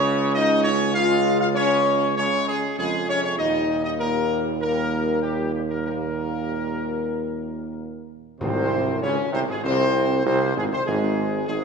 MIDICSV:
0, 0, Header, 1, 7, 480
1, 0, Start_track
1, 0, Key_signature, -4, "major"
1, 0, Tempo, 609137
1, 750, Time_signature, 4, 2, 24, 8
1, 4118, Tempo, 636943
1, 6518, Tempo, 614125
1, 9044, End_track
2, 0, Start_track
2, 0, Title_t, "Trumpet section"
2, 0, Program_c, 0, 61
2, 0, Note_on_c, 0, 73, 127
2, 244, Note_off_c, 0, 73, 0
2, 273, Note_on_c, 0, 75, 127
2, 495, Note_off_c, 0, 75, 0
2, 504, Note_on_c, 0, 73, 127
2, 729, Note_off_c, 0, 73, 0
2, 747, Note_on_c, 0, 77, 126
2, 1082, Note_off_c, 0, 77, 0
2, 1106, Note_on_c, 0, 77, 127
2, 1161, Note_off_c, 0, 77, 0
2, 1224, Note_on_c, 0, 73, 127
2, 1674, Note_off_c, 0, 73, 0
2, 1709, Note_on_c, 0, 73, 127
2, 1932, Note_off_c, 0, 73, 0
2, 1955, Note_on_c, 0, 68, 115
2, 2176, Note_off_c, 0, 68, 0
2, 2193, Note_on_c, 0, 68, 116
2, 2415, Note_off_c, 0, 68, 0
2, 2433, Note_on_c, 0, 73, 121
2, 2543, Note_off_c, 0, 73, 0
2, 2555, Note_on_c, 0, 73, 109
2, 2663, Note_off_c, 0, 73, 0
2, 2667, Note_on_c, 0, 75, 114
2, 3002, Note_off_c, 0, 75, 0
2, 3029, Note_on_c, 0, 75, 120
2, 3083, Note_off_c, 0, 75, 0
2, 3148, Note_on_c, 0, 70, 116
2, 3501, Note_off_c, 0, 70, 0
2, 3635, Note_on_c, 0, 70, 110
2, 4087, Note_off_c, 0, 70, 0
2, 4114, Note_on_c, 0, 67, 94
2, 4334, Note_off_c, 0, 67, 0
2, 4353, Note_on_c, 0, 67, 77
2, 4407, Note_off_c, 0, 67, 0
2, 4474, Note_on_c, 0, 70, 86
2, 4584, Note_off_c, 0, 70, 0
2, 4599, Note_on_c, 0, 70, 99
2, 6249, Note_off_c, 0, 70, 0
2, 6519, Note_on_c, 0, 72, 106
2, 6974, Note_off_c, 0, 72, 0
2, 6999, Note_on_c, 0, 73, 103
2, 7109, Note_off_c, 0, 73, 0
2, 7243, Note_on_c, 0, 72, 114
2, 7297, Note_off_c, 0, 72, 0
2, 7367, Note_on_c, 0, 68, 102
2, 7477, Note_off_c, 0, 68, 0
2, 7479, Note_on_c, 0, 72, 122
2, 7931, Note_off_c, 0, 72, 0
2, 7959, Note_on_c, 0, 72, 108
2, 8184, Note_off_c, 0, 72, 0
2, 8209, Note_on_c, 0, 68, 109
2, 8261, Note_off_c, 0, 68, 0
2, 8324, Note_on_c, 0, 72, 105
2, 8434, Note_off_c, 0, 72, 0
2, 8438, Note_on_c, 0, 68, 102
2, 8886, Note_off_c, 0, 68, 0
2, 8919, Note_on_c, 0, 68, 127
2, 9044, Note_off_c, 0, 68, 0
2, 9044, End_track
3, 0, Start_track
3, 0, Title_t, "French horn section"
3, 0, Program_c, 1, 60
3, 0, Note_on_c, 1, 61, 113
3, 247, Note_off_c, 1, 61, 0
3, 286, Note_on_c, 1, 63, 119
3, 502, Note_off_c, 1, 63, 0
3, 519, Note_on_c, 1, 61, 106
3, 737, Note_off_c, 1, 61, 0
3, 757, Note_on_c, 1, 65, 118
3, 1087, Note_off_c, 1, 65, 0
3, 1107, Note_on_c, 1, 65, 107
3, 1162, Note_off_c, 1, 65, 0
3, 1217, Note_on_c, 1, 61, 124
3, 1671, Note_off_c, 1, 61, 0
3, 1718, Note_on_c, 1, 61, 107
3, 1823, Note_off_c, 1, 61, 0
3, 1957, Note_on_c, 1, 56, 103
3, 2064, Note_off_c, 1, 56, 0
3, 2207, Note_on_c, 1, 56, 95
3, 2311, Note_off_c, 1, 56, 0
3, 2435, Note_on_c, 1, 61, 112
3, 2542, Note_off_c, 1, 61, 0
3, 2551, Note_on_c, 1, 61, 83
3, 2661, Note_off_c, 1, 61, 0
3, 2669, Note_on_c, 1, 63, 112
3, 3003, Note_off_c, 1, 63, 0
3, 3034, Note_on_c, 1, 63, 94
3, 3143, Note_off_c, 1, 63, 0
3, 3157, Note_on_c, 1, 58, 98
3, 3605, Note_off_c, 1, 58, 0
3, 3645, Note_on_c, 1, 58, 88
3, 4091, Note_off_c, 1, 58, 0
3, 4123, Note_on_c, 1, 55, 80
3, 4346, Note_off_c, 1, 55, 0
3, 4355, Note_on_c, 1, 55, 70
3, 4408, Note_off_c, 1, 55, 0
3, 4469, Note_on_c, 1, 58, 66
3, 4524, Note_off_c, 1, 58, 0
3, 4595, Note_on_c, 1, 58, 90
3, 6247, Note_off_c, 1, 58, 0
3, 6517, Note_on_c, 1, 60, 109
3, 6972, Note_off_c, 1, 60, 0
3, 7003, Note_on_c, 1, 61, 115
3, 7227, Note_off_c, 1, 61, 0
3, 7237, Note_on_c, 1, 60, 100
3, 7352, Note_off_c, 1, 60, 0
3, 7353, Note_on_c, 1, 56, 100
3, 7409, Note_off_c, 1, 56, 0
3, 7475, Note_on_c, 1, 60, 114
3, 7928, Note_off_c, 1, 60, 0
3, 7952, Note_on_c, 1, 60, 105
3, 8063, Note_off_c, 1, 60, 0
3, 8204, Note_on_c, 1, 56, 89
3, 8314, Note_off_c, 1, 56, 0
3, 8317, Note_on_c, 1, 60, 93
3, 8372, Note_off_c, 1, 60, 0
3, 8433, Note_on_c, 1, 56, 99
3, 8884, Note_off_c, 1, 56, 0
3, 8909, Note_on_c, 1, 56, 122
3, 9044, Note_off_c, 1, 56, 0
3, 9044, End_track
4, 0, Start_track
4, 0, Title_t, "Trombone section"
4, 0, Program_c, 2, 61
4, 0, Note_on_c, 2, 49, 121
4, 0, Note_on_c, 2, 56, 103
4, 715, Note_off_c, 2, 49, 0
4, 716, Note_off_c, 2, 56, 0
4, 739, Note_on_c, 2, 49, 96
4, 740, Note_on_c, 2, 56, 108
4, 1192, Note_off_c, 2, 49, 0
4, 1192, Note_off_c, 2, 56, 0
4, 1225, Note_on_c, 2, 49, 107
4, 1228, Note_on_c, 2, 56, 97
4, 1675, Note_off_c, 2, 49, 0
4, 1676, Note_off_c, 2, 56, 0
4, 1708, Note_on_c, 2, 49, 96
4, 1712, Note_on_c, 2, 56, 97
4, 2158, Note_off_c, 2, 49, 0
4, 2159, Note_off_c, 2, 56, 0
4, 2193, Note_on_c, 2, 49, 93
4, 2195, Note_on_c, 2, 56, 83
4, 2415, Note_off_c, 2, 49, 0
4, 2426, Note_on_c, 2, 48, 91
4, 2640, Note_off_c, 2, 56, 0
4, 2662, Note_on_c, 2, 55, 90
4, 2664, Note_on_c, 2, 46, 90
4, 2667, Note_off_c, 2, 48, 0
4, 3124, Note_off_c, 2, 46, 0
4, 3124, Note_off_c, 2, 55, 0
4, 3134, Note_on_c, 2, 46, 83
4, 3134, Note_on_c, 2, 55, 80
4, 3593, Note_off_c, 2, 46, 0
4, 3594, Note_off_c, 2, 55, 0
4, 3619, Note_on_c, 2, 46, 75
4, 3619, Note_on_c, 2, 55, 80
4, 4078, Note_off_c, 2, 46, 0
4, 4079, Note_off_c, 2, 55, 0
4, 4114, Note_on_c, 2, 46, 69
4, 4119, Note_on_c, 2, 55, 64
4, 4560, Note_off_c, 2, 46, 0
4, 4562, Note_off_c, 2, 55, 0
4, 4579, Note_on_c, 2, 55, 70
4, 4582, Note_on_c, 2, 46, 71
4, 6239, Note_off_c, 2, 55, 0
4, 6240, Note_off_c, 2, 46, 0
4, 6506, Note_on_c, 2, 48, 105
4, 6967, Note_off_c, 2, 48, 0
4, 6994, Note_on_c, 2, 49, 107
4, 7105, Note_off_c, 2, 49, 0
4, 7229, Note_on_c, 2, 48, 102
4, 7348, Note_off_c, 2, 48, 0
4, 7359, Note_on_c, 2, 44, 87
4, 7471, Note_on_c, 2, 48, 106
4, 7473, Note_off_c, 2, 44, 0
4, 7950, Note_off_c, 2, 48, 0
4, 7960, Note_on_c, 2, 48, 101
4, 8068, Note_off_c, 2, 48, 0
4, 8204, Note_on_c, 2, 44, 91
4, 8314, Note_off_c, 2, 44, 0
4, 8319, Note_on_c, 2, 48, 86
4, 8373, Note_off_c, 2, 48, 0
4, 8447, Note_on_c, 2, 44, 100
4, 8891, Note_off_c, 2, 44, 0
4, 8923, Note_on_c, 2, 44, 107
4, 9044, Note_off_c, 2, 44, 0
4, 9044, End_track
5, 0, Start_track
5, 0, Title_t, "Timpani"
5, 0, Program_c, 3, 47
5, 6517, Note_on_c, 3, 44, 116
5, 7213, Note_off_c, 3, 44, 0
5, 9044, End_track
6, 0, Start_track
6, 0, Title_t, "Tuba"
6, 0, Program_c, 4, 58
6, 0, Note_on_c, 4, 37, 116
6, 2059, Note_off_c, 4, 37, 0
6, 2193, Note_on_c, 4, 41, 98
6, 2672, Note_on_c, 4, 39, 108
6, 2684, Note_off_c, 4, 41, 0
6, 6277, Note_off_c, 4, 39, 0
6, 6520, Note_on_c, 4, 36, 117
6, 6974, Note_off_c, 4, 36, 0
6, 7005, Note_on_c, 4, 37, 102
6, 7113, Note_off_c, 4, 37, 0
6, 7244, Note_on_c, 4, 36, 115
6, 7298, Note_off_c, 4, 36, 0
6, 7359, Note_on_c, 4, 32, 84
6, 7414, Note_off_c, 4, 32, 0
6, 7480, Note_on_c, 4, 36, 121
6, 7931, Note_off_c, 4, 36, 0
6, 7962, Note_on_c, 4, 36, 127
6, 8185, Note_off_c, 4, 36, 0
6, 8201, Note_on_c, 4, 32, 106
6, 8313, Note_off_c, 4, 32, 0
6, 8325, Note_on_c, 4, 36, 97
6, 8378, Note_off_c, 4, 36, 0
6, 8441, Note_on_c, 4, 32, 121
6, 8888, Note_off_c, 4, 32, 0
6, 8923, Note_on_c, 4, 32, 108
6, 9044, Note_off_c, 4, 32, 0
6, 9044, End_track
7, 0, Start_track
7, 0, Title_t, "Tam-tam"
7, 6516, Note_on_c, 9, 52, 67
7, 6594, Note_off_c, 9, 52, 0
7, 9044, End_track
0, 0, End_of_file